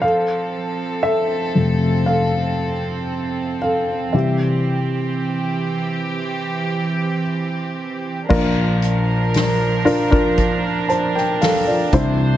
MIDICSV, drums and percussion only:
0, 0, Header, 1, 2, 480
1, 0, Start_track
1, 0, Tempo, 1027397
1, 15, Time_signature, 4, 2, 24, 8
1, 2415, Tempo, 1038062
1, 5745, End_track
2, 0, Start_track
2, 0, Title_t, "Drums"
2, 3865, Note_on_c, 9, 36, 109
2, 3865, Note_on_c, 9, 49, 96
2, 3911, Note_off_c, 9, 36, 0
2, 3911, Note_off_c, 9, 49, 0
2, 4104, Note_on_c, 9, 46, 74
2, 4106, Note_on_c, 9, 44, 62
2, 4150, Note_off_c, 9, 46, 0
2, 4152, Note_off_c, 9, 44, 0
2, 4344, Note_on_c, 9, 44, 64
2, 4344, Note_on_c, 9, 46, 92
2, 4352, Note_on_c, 9, 38, 100
2, 4390, Note_off_c, 9, 44, 0
2, 4391, Note_off_c, 9, 46, 0
2, 4398, Note_off_c, 9, 38, 0
2, 4586, Note_on_c, 9, 44, 60
2, 4588, Note_on_c, 9, 46, 50
2, 4632, Note_off_c, 9, 44, 0
2, 4634, Note_off_c, 9, 46, 0
2, 4706, Note_on_c, 9, 36, 93
2, 4752, Note_off_c, 9, 36, 0
2, 4823, Note_on_c, 9, 46, 73
2, 4824, Note_on_c, 9, 36, 76
2, 4824, Note_on_c, 9, 44, 50
2, 4869, Note_off_c, 9, 46, 0
2, 4870, Note_off_c, 9, 36, 0
2, 4870, Note_off_c, 9, 44, 0
2, 5063, Note_on_c, 9, 46, 55
2, 5065, Note_on_c, 9, 44, 52
2, 5109, Note_off_c, 9, 46, 0
2, 5112, Note_off_c, 9, 44, 0
2, 5190, Note_on_c, 9, 38, 33
2, 5236, Note_off_c, 9, 38, 0
2, 5303, Note_on_c, 9, 44, 67
2, 5304, Note_on_c, 9, 46, 76
2, 5308, Note_on_c, 9, 38, 95
2, 5349, Note_off_c, 9, 44, 0
2, 5350, Note_off_c, 9, 46, 0
2, 5354, Note_off_c, 9, 38, 0
2, 5540, Note_on_c, 9, 36, 106
2, 5540, Note_on_c, 9, 46, 68
2, 5541, Note_on_c, 9, 44, 63
2, 5586, Note_off_c, 9, 46, 0
2, 5587, Note_off_c, 9, 36, 0
2, 5587, Note_off_c, 9, 44, 0
2, 5745, End_track
0, 0, End_of_file